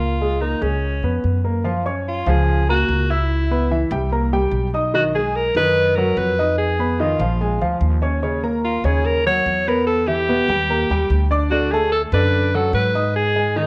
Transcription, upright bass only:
0.00 0.56 C#2 medium
0.62 1.00 C#2 medium
1.03 1.22 F2 medium
1.24 2.21 F#2 medium
2.26 2.85 C#2 medium
2.89 3.86 C#2 medium
3.91 4.49 C2 loud
4.51 5.49 B1 medium
5.55 6.13 F#2 medium
6.17 7.14 F2 medium
7.19 7.58 A#1 loud
7.61 7.80 D2 medium
7.81 8.78 D#2 medium
8.84 9.42 D#2 medium
9.46 10.43 E2 medium
10.48 10.87 D#2 medium
10.90 11.09 D#2 medium
11.10 12.07 D2 medium
12.12 12.70 F#2 loud
12.73 13.67 G#2 medium

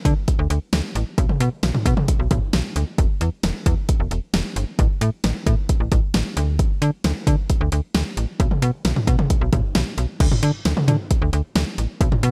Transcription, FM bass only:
0.05 0.14 D3 medium
0.39 0.48 D2 medium
0.50 0.59 D2 loud
0.73 0.82 D2 loud
0.95 1.04 A1 loud
1.18 1.27 B1 loud
1.40 1.49 B2 loud
1.63 1.72 B1 loud
1.86 1.94 B2 loud
2.19 2.28 B1 medium
2.31 2.40 B1 loud
2.53 2.62 B1 loud
2.76 2.85 D2 loud
2.98 3.07 E1 loud
3.21 3.30 E2 loud
3.43 3.52 E1 loud
3.66 3.75 E2 loud
4.00 4.09 E1 medium
4.11 4.20 E1 loud
4.34 4.42 E1 loud
4.56 4.65 G1 medium
4.79 4.88 A1 loud
5.01 5.10 A2 loud
5.24 5.33 A1 loud
5.46 5.55 A2 medium
5.80 5.89 A1 medium
5.92 6.01 A1 loud
6.14 6.23 A1 loud
6.37 6.63 D2 loud
6.82 6.91 D3 loud
7.04 7.13 D2 loud
7.27 7.36 D3 medium
7.61 7.70 D2 medium
7.72 7.81 D2 loud
7.95 8.03 D2 loud
8.17 8.26 A1 medium
8.40 8.49 B1 loud
8.62 8.71 B2 loud
8.85 8.94 B1 loud
9.07 9.16 B2 medium
9.41 9.50 B1 medium
9.53 9.61 B1 loud
9.75 9.84 B1 loud
9.98 10.06 B1 loud
10.20 10.29 D2 loud
10.43 10.52 D3 loud
10.65 10.74 D2 medium
10.88 10.97 D3 medium
11.22 11.31 D2 medium
11.33 11.42 D2 loud
11.56 11.64 D2 loud
11.78 11.87 A1 medium
12.01 12.09 B1 loud
12.23 12.31 B2 loud

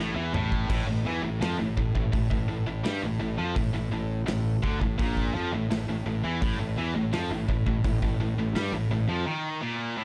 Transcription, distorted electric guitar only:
0.00 0.15 A2 loud
0.16 0.33 E3 loud
0.35 0.69 A2 medium
0.70 0.87 A2 loud
0.88 1.06 A2 medium
1.06 1.23 E3 medium
1.23 1.41 A2 medium
1.41 1.58 F3 loud
1.59 1.76 A2 medium
1.77 1.94 A2 medium
1.95 2.11 A2 medium
2.12 2.29 A2 medium
2.30 2.47 A2 medium
2.48 2.65 A2 medium
2.67 2.85 A2 medium
2.84 3.01 G3 loud
3.02 3.19 A2 medium
3.20 3.38 A2 medium
3.38 3.55 F3 loud
3.56 3.72 A2 medium
3.74 3.90 A2 medium
3.92 4.20 A2 medium
4.27 4.56 A2 medium
4.63 4.80 D3 loud
4.81 4.98 A2 medium
4.98 5.33 A#2 loud
5.35 5.51 F3 medium
5.53 5.70 A2 medium
5.71 5.88 A2 medium
5.89 6.05 A2 medium
6.06 6.23 A2 medium
6.24 6.40 E3 loud
6.42 6.59 A2 loud
6.60 6.77 A2 medium
6.78 6.94 E3 loud
6.95 7.12 A2 medium
7.13 7.29 F3 medium
7.31 7.47 A2 medium
7.49 7.65 A2 medium
7.66 7.83 A2 medium
7.85 8.01 A2 medium
8.02 8.19 A2 medium
8.20 8.37 A2 medium
8.38 8.56 A2 medium
8.56 8.72 G3 loud
8.73 8.90 A2 medium
8.91 9.08 A2 medium
9.09 9.25 F3 loud
9.26 9.61 D#3 loud
9.62 9.96 A#2 loud
9.98 10.04 A2 loud

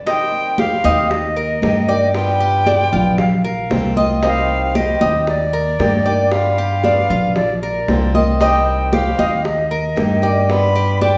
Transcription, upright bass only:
0.84 1.58 D#2 medium
1.63 2.86 G2 medium
2.93 3.67 A#1 medium
3.71 4.95 C2 medium
5.01 5.75 D#2 loud
5.79 7.03 G2 loud
7.10 7.84 A#1 medium
7.88 9.12 C2 loud
9.19 9.93 D#2 medium
9.97 11.18 G2 medium

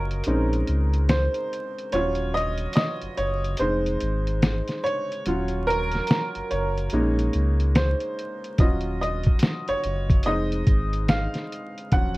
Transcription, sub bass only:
0.00 0.22 F#1 loud
0.27 0.63 A#1 loud
0.69 1.28 C#2 medium
1.93 2.67 D#1 loud
3.02 3.09 F#1 soft
3.18 3.55 F#1 medium
3.60 3.97 F1 loud
4.02 4.62 G#1 loud
5.27 6.00 D#1 loud
6.36 6.42 F#1 soft
6.52 6.88 F#1 medium
6.93 7.30 A#1 medium
7.35 7.95 C#2 medium
8.59 9.33 D#1 loud
9.69 9.75 F#1 soft
9.85 10.22 F#1 medium
10.26 10.63 F1 loud
10.68 11.28 G#1 medium
11.93 12.18 D#1 loud

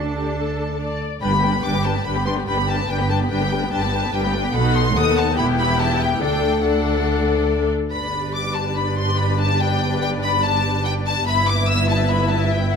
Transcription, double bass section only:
0.00 0.98 D2 soft
1.22 1.59 G1 medium
1.64 2.01 G1 medium
2.06 2.42 G1 medium
2.47 2.84 G1 medium
2.89 3.26 G1 medium
3.31 3.67 G1 medium
3.72 4.08 G1 medium
4.13 4.49 G1 medium
4.54 4.93 B1 medium
4.96 5.37 D#2 medium
5.37 6.21 E1 medium
6.21 7.68 D2 medium
7.92 11.22 G1 medium
11.27 12.76 G1 medium

